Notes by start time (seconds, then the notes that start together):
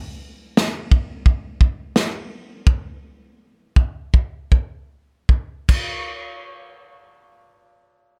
0.57 snare
0.92 kick
1.26 kick
1.61 kick
1.96 snare
2.67 kick
3.76 kick
4.14 kick
4.52 kick
5.29 kick
5.69 kick, crash